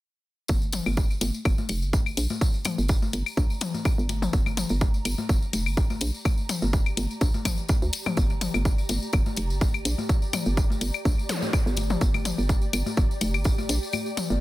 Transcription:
0.48 G1 G4, kick, tambourine, high conga
0.62 tambourine
0.72 closed hi-hat, mid tom, tambourine
0.86 G1, tambourine, high conga, claves
0.97 D5, kick, tambourine
1.11 tambourine
1.21 G1, closed hi-hat, tambourine, high conga
1.34 tambourine
1.45 G1, kick, tambourine, claves
1.58 tambourine, high conga
1.67 F1 A#5, closed hi-hat, tambourine
1.82 G1, tambourine
1.93 kick, tambourine, high conga
2.06 tambourine, claves
2.17 A#1, closed hi-hat, tambourine
2.30 tambourine, high conga
2.41 kick, tambourine
2.54 tambourine
2.65 closed hi-hat, mid tom, tambourine, high conga, claves
2.78 G1, tambourine
2.88 kick, tambourine
3.02 tambourine, high conga
3.13 G1, closed hi-hat, tambourine
3.26 tambourine, claves
3.37 A#1, kick, tambourine, high conga
3.50 tambourine
3.61 closed hi-hat, mid tom, tambourine
3.74 tambourine, high conga
3.85 kick, tambourine, claves
3.98 G1, tambourine
4.09 closed hi-hat, tambourine, high conga
4.22 mid tom, tambourine
4.33 G1, kick, tambourine
4.46 tambourine, high conga, claves
4.57 closed hi-hat, mid tom, tambourine
4.69 G1, tambourine
4.81 kick, tambourine, high conga
4.94 tambourine
5.05 G1, closed hi-hat, tambourine, claves
5.18 tambourine, high conga
5.29 G1, kick, tambourine
5.42 tambourine
5.53 F1, closed hi-hat, tambourine, high conga
5.66 G1, tambourine, claves
5.77 kick, tambourine
5.90 tambourine, high conga
6.01 A#1, closed hi-hat, tambourine
6.14 tambourine
6.25 kick, tambourine, high conga, claves
6.38 tambourine
6.49 closed hi-hat, mid tom, tambourine
6.62 G1, tambourine, high conga
6.73 kick, tambourine
6.86 tambourine, claves
6.97 G1, closed hi-hat, tambourine, high conga
7.11 tambourine
7.21 A#1, kick, tambourine
7.34 tambourine, high conga
7.45 kick, closed hi-hat, mid tom, tambourine, claves
7.58 tambourine
7.68 kick, tambourine, high conga
7.82 D2, tambourine
7.93 closed hi-hat, tambourine
8.06 mid tom, tambourine, high conga, claves
8.17 G1, kick, tambourine, high conga
8.30 tambourine
8.41 closed hi-hat, mid tom, tambourine
8.54 G1, tambourine, high conga, claves
8.65 kick, tambourine
8.78 tambourine
8.89 G1, closed hi-hat, tambourine, high conga
9.02 tambourine
9.13 G1, kick, tambourine, claves
9.26 tambourine, high conga
9.36 F1, closed hi-hat, tambourine
9.50 G1, tambourine
9.61 kick, tambourine, high conga
9.74 tambourine, claves
9.85 A#1, closed hi-hat, tambourine
9.98 tambourine, high conga
10.09 kick, tambourine
10.22 tambourine
10.33 closed hi-hat, mid tom, tambourine, high conga, claves
10.46 G1, tambourine
10.57 kick, tambourine
10.70 tambourine, high conga
10.81 G1, closed hi-hat, tambourine
10.94 tambourine, claves
11.05 A#1, kick, tambourine, high conga
11.19 tambourine
11.29 closed hi-hat, mid tom, tambourine, zap
11.42 tambourine, high conga
11.53 kick, tambourine, claves
11.66 G1, tambourine
11.76 closed hi-hat, tambourine, high conga
11.90 mid tom, tambourine
12.01 G1, kick, tambourine
12.14 tambourine, high conga, claves
12.25 closed hi-hat, mid tom, tambourine
12.38 G1, tambourine
12.49 kick, tambourine, high conga
12.62 tambourine
12.73 G1, closed hi-hat, tambourine, claves
12.86 tambourine, high conga
12.97 G1, kick, tambourine
13.11 tambourine
13.21 F1, closed hi-hat, tambourine, high conga
13.34 G1, tambourine, claves
13.44 kick, tambourine
13.58 tambourine, high conga
13.69 A#1, closed hi-hat, tambourine
13.83 tambourine
13.93 tambourine, high conga, claves
14.06 tambourine
14.17 closed hi-hat, mid tom, tambourine
14.30 G1, tambourine, high conga

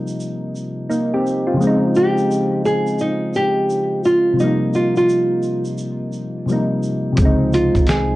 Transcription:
Already playing: C3 F3 G3 A#3 D#4
0.07 shaker
0.20 shaker
0.55 shaker
0.89 A#3 D#4, shaker
1.14 C4 G4
1.27 shaker
1.47 C4 F4
1.54 C#3 F3
1.60 G#3 C4, shaker
1.67 D#4
1.95 G4, shaker
2.18 shaker
2.31 shaker
2.65 G#4, shaker
2.87 shaker
2.99 D#4, shaker
3.34 G4, shaker
3.70 shaker
4.04 F4, shaker
4.33 C3 F3
4.39 G3 A#3 D#4, shaker
4.47 D#4
4.74 F4, shaker
4.96 F4, shaker
5.09 shaker
5.43 shaker
5.65 shaker
5.78 shaker
6.13 shaker
6.46 C3 F3 G3, shaker
6.51 A#3 D#4
6.83 shaker
7.12 C3 F3
7.17 C#2 G#3, kick, closed hi-hat, shaker
7.22 C4 D#4
7.53 F4, closed hi-hat, shaker
7.75 C2, kick, closed hi-hat, shaker
7.87 G#4, snare, closed hi-hat, shaker

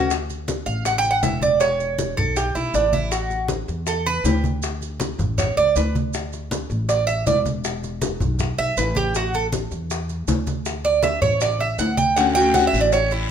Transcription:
Already playing: D2 A3 C#4 F#4
0.11 high bongo, high conga, maracas
0.30 high bongo, high conga, maracas
0.48 high bongo, high conga, maracas
0.66 A1 F5, high bongo, maracas
0.85 F#5, high bongo, high conga, maracas
0.98 G5
1.04 high bongo, high conga, maracas
1.11 F#5
1.23 E1 E5, high bongo, low bongo, high conga, maracas
1.42 D5, high conga, maracas
1.60 C#5, high bongo, high conga, maracas
1.80 high bongo, high conga, maracas
1.99 high bongo, high conga, maracas
2.17 B1 A4, high bongo, high conga, low conga, maracas
2.36 G4, high bongo, high conga, maracas
2.55 B1 E4, high bongo, high conga, maracas
2.74 A1 D4, high bongo, low bongo, high conga, maracas
2.93 E4, high conga, maracas
3.11 F#4, high bongo, high conga, maracas
3.30 high bongo, high conga, maracas
3.48 high bongo, high conga, maracas
3.68 E2, high bongo, maracas
3.87 A4, high bongo, high conga, maracas
4.06 B4, high bongo, high conga, maracas
4.24 D2 G4, high bongo, low bongo, high conga, maracas
4.44 high conga, maracas
4.62 high bongo, high conga, maracas
4.81 high bongo, high conga, maracas
5.00 high bongo, high conga, maracas
5.19 A1, high bongo, high conga, low conga, maracas
5.38 C#5, high bongo, high conga, low conga, maracas
5.57 C#2 D5, high bongo, high conga, maracas
5.76 D2 B4, high bongo, low bongo, high conga, maracas
5.95 high conga, maracas
6.14 high bongo, high conga, maracas
6.33 high bongo, high conga, maracas
6.51 high bongo, high conga, maracas
6.70 A1, high bongo, maracas
6.89 D5, high bongo, high conga, maracas
7.07 E5, high bongo, high conga, maracas
7.26 E1 D5, high bongo, low bongo, high conga, maracas
7.46 high conga, maracas
7.64 high bongo, high conga, maracas
7.84 high bongo, high conga, maracas
8.02 high bongo, high conga, maracas
8.20 B1, high bongo, high conga, low conga, maracas
8.39 high bongo, high conga, low conga, maracas
8.58 B1 E5, high bongo, high conga, maracas
8.77 A1 B4, high bongo, low bongo, high conga, maracas
8.95 G4, high conga, maracas
9.14 F#4, high bongo, high conga, maracas
9.34 A4, high bongo, high conga, maracas
9.53 high bongo, high conga, maracas
9.71 E2, high bongo, maracas
9.90 high bongo, high conga, maracas
10.09 high bongo, high conga, maracas
10.28 D2, high bongo, low bongo, high conga, maracas
10.47 high conga, maracas
10.65 high bongo, high conga, maracas
10.84 D5, high bongo, high conga, maracas
11.03 E5, high bongo, high conga, maracas
11.22 A1 C#5, high bongo, high conga, low conga, maracas
11.41 D5, high bongo, high conga, maracas
11.59 E5, high bongo, high conga, maracas
11.78 D2 F#5, high bongo, low bongo, high conga, maracas
11.97 G5, high conga, maracas
12.16 D3 A3 C#4 F#4 F#5, high bongo, high conga, long guiro, maracas
12.35 A3 C#4 F#4 G5, high conga, maracas
12.54 D3 A3 C#4 F#5, high bongo, high conga, short guiro, maracas
12.58 F#4
12.67 E5
12.73 A1, high bongo, short guiro, maracas
12.81 D5
12.92 C#5, muted nylon-string guitar stroke, high bongo, high conga, long guiro, maracas
13.11 E4, high bongo, high conga, maracas

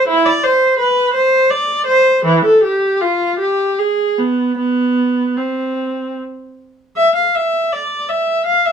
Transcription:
0.08 E4
0.26 D5
0.43 C5
0.78 B4
1.14 C5
1.50 D5
1.87 C5
2.25 E3
2.45 A4
2.64 G4
3.01 F4
3.39 G4
3.79 G#4
4.18 B3
4.58 B3
5.37 C4
6.97 E5
7.15 F5
7.35 E5
7.72 D5
8.09 E5
8.46 F5
8.66 E5

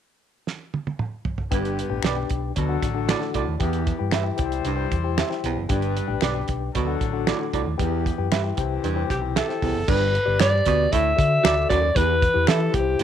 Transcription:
0.47 snare
0.74 high tom
0.87 high tom
0.99 mid tom
1.25 floor tom
1.38 floor tom
1.51 G1 G2 D3 B3 D4 G4 B4 G5, kick, closed hi-hat
1.65 closed hi-hat
1.79 closed hi-hat
1.90 A1 D4 G4 B4 G5
2.03 B1 G4 B4 D5, finger snap, snare, closed hi-hat
2.16 D4 G4 B4 G5
2.30 B1, kick, closed hi-hat
2.56 D2 B2 D3 F#3 D4 A4, kick, closed hi-hat
2.69 D4 F#4 A4 F#5
2.82 A1, kick, snare, closed hi-hat
2.94 D4 F#4 A4 F#5
3.09 A2 F#4 A4 D5, finger snap, snare, closed hi-hat
3.20 D4 F#4 A4 F#5, snare
3.34 C2 A2 F#4 A4 D5, kick, closed hi-hat
3.48 D#2
3.59 E2 E3 B3 E4 G4 B4 G5, kick, closed hi-hat
3.73 closed hi-hat
3.87 kick, closed hi-hat
3.99 G2 E4 G4 B4 G5
4.11 G4 B4 E5, finger snap, snare, closed hi-hat
4.24 E4 G4 B4 G5
4.37 C2 C3 G3 E4 G4 C5 G5, kick, closed hi-hat
4.52 closed hi-hat
4.65 C2 G2, closed hi-hat
4.76 E4 G4 C5 G5
4.91 E2, kick, closed hi-hat
5.03 E4 G4 C5 G5
5.18 G4 C5 E5, finger snap, snare, closed hi-hat
5.30 E4 G4 C5 G5, snare
5.44 B1 E2, closed hi-hat
5.56 F#1
5.69 G1 G2 G3 D4 G4 B4 G5, kick, closed hi-hat
5.82 closed hi-hat
5.97 closed hi-hat
6.08 A1 D4 G4 B4 G5
6.21 B1 G4 B4 D5, finger snap, snare, closed hi-hat
6.34 D4 G4 B4 G5
6.48 B1, kick, closed hi-hat
6.74 D2 B2 D3 F#3 D4 A4, kick, closed hi-hat
6.87 D4 F#4 A4 F#5
7.01 A1, kick, closed hi-hat
7.13 D4 F#4 A4 F#5
7.27 A2 F#4 A4 D5, finger snap, snare, closed hi-hat
7.39 D4 F#4 A4 F#5
7.53 C2 A2 F#4 A4 D5, kick, closed hi-hat
7.66 D#2
7.78 E2 E3 B3 E4 G4 B4 G5, kick, closed hi-hat
8.06 kick, closed hi-hat
8.18 F#2 E4 G4 B4 G5
8.31 G2 G4 B4 E5, finger snap, snare, closed hi-hat
8.43 E4 G4 B4 G5
8.57 C2 C3 E3 C4 E4 G4 C5 G5, kick, closed hi-hat
8.84 E2 G2, closed hi-hat
8.96 E4 G4 C5 G5
9.10 B1 G4, kick, snare, closed hi-hat
9.22 E4 G4 C5 G5
9.36 G4 A4 C5 E5, finger snap, snare, closed hi-hat
9.48 E4 G4 C5 G5, snare
9.62 C2 E2, kick, open hi-hat
9.75 F#1
9.88 G1 G2 G4 B4 D5, kick, crash
10.15 closed hi-hat
10.25 G1 G4 B4 D5
10.40 G2 G4 B4 D5, finger snap, snare, closed hi-hat
10.52 G4 B4 C5
10.59 D5
10.66 D2 B2, kick, closed hi-hat
10.90 D2 A2 D3 E5, kick, closed hi-hat
11.16 D3 F#4 A4 D5, kick, closed hi-hat
11.44 D2 F#4 A4 D5, finger snap, snare, closed hi-hat
11.56 F#4 A4 D5
11.69 D#2 F#2 F#4 A4 D5, kick, closed hi-hat
11.95 E2 E3 E4 G4 B4, kick, closed hi-hat
12.22 kick, closed hi-hat
12.34 E2 E4 G4 B4
12.47 E3 G4 A4 B4 E5, finger snap, snare, closed hi-hat
12.59 E4 G4 B4
12.72 C2 C3 E4 G4 B4, kick, closed hi-hat
12.79 C5
12.99 G1, closed hi-hat

